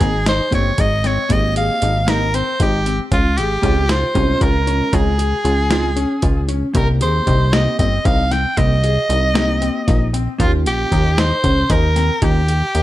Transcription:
Already playing: A#3 C4 D#4 G#4 G5
0.01 G#1 D#4, kick, snare, closed hi-hat
0.26 D#4 C5, snare, closed hi-hat
0.51 G1 A#3 C4 D#4 G4 C#5, kick, closed hi-hat
0.78 G#1 D#4 D#5, kick, closed hi-hat
1.04 C4 C#5, snare, closed hi-hat
1.29 G#1 A#3 C4 D#4 G4 D#5, kick, closed hi-hat
1.56 G#4 F5, closed hi-hat
1.82 G#1 D#4, closed hi-hat
2.07 A#3 C4 D#4 G4 A#4, snare, closed hi-hat
2.34 C4 C5, closed hi-hat
2.60 G#1 D#4 G4, kick, closed hi-hat
2.86 C4, closed hi-hat
3.12 C#2 F4, kick, closed hi-hat
3.38 G#1 G4 G#4, closed hi-hat
3.62 C#2 G#3 C4 D#4 F4, kick, closed hi-hat
3.89 F4 C5, snare, closed hi-hat
4.15 C2 G#3 C4 C#4 D#4 F4, kick, closed hi-hat
4.41 C#2 F4 A#4, kick, closed hi-hat
4.67 C#4, closed hi-hat
4.93 C#2 G#3 C4 D#4 F4 G#4, kick, closed hi-hat
5.18 G#4, closed hi-hat
5.44 C#2 F4, closed hi-hat
5.70 G#3 C4 D#4 F4, snare, closed hi-hat
5.96 C#4, closed hi-hat
6.22 C#2 F4, kick, closed hi-hat
6.48 C#4, closed hi-hat
6.74 C2 A#3 C4 D#4 G4 A#4, kick, closed hi-hat
7.01 D#2 G#4 C5, closed hi-hat
7.27 C2 D#4, kick, closed hi-hat
7.53 A#3 C4 D#4 G4 D#5, snare, closed hi-hat
7.79 G1 C4 D#5, kick, closed hi-hat
8.05 C2 D#4 F5, kick, closed hi-hat
8.31 C4 G5, snare, closed hi-hat
8.57 C2 A#3 C4 D#4 G4 D#5, kick, closed hi-hat
8.84 G#4, closed hi-hat
9.10 C2 D#4, closed hi-hat
9.34 A#3 C4 D#4 G4, snare, closed hi-hat
9.62 C4, closed hi-hat
9.87 A#1 D#4, kick, snare, closed hi-hat
10.13 C4, closed hi-hat
10.38 D#2 A#3 C#4 F4 G4, kick, closed hi-hat
10.66 A#1 G4, closed hi-hat
10.92 D#2 D#4, kick, closed hi-hat
11.18 D#4 C5, snare, closed hi-hat
11.44 C#2 C#4, kick, closed hi-hat
11.70 D#2 D#4 A#4, kick, closed hi-hat
11.96 C4, snare, closed hi-hat
12.22 D#2 A#3 C#4 F4 G4, kick, closed hi-hat
12.48 G4, closed hi-hat
12.75 D#2 D#4, closed hi-hat

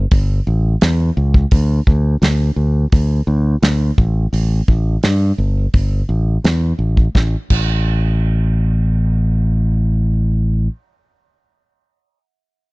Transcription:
0.11 G1, kick, open hi-hat
0.47 A1
0.81 E2, snare, open hi-hat
1.17 C#2
1.34 kick
1.51 D2, kick, open hi-hat
1.87 D2, kick
2.22 D2, snare, open hi-hat
2.56 D2
2.92 D2, kick, open hi-hat
3.27 D2
3.62 D2, snare, open hi-hat
3.98 A1, kick
4.33 A1, open hi-hat
4.68 A1, kick
5.03 G2, snare, open hi-hat
5.38 G1
5.74 G1, kick, open hi-hat
6.09 A1
6.44 E2, snare, open hi-hat
6.79 A1
6.97 kick
7.15 A1, kick, snare
7.50 A1, kick, crash

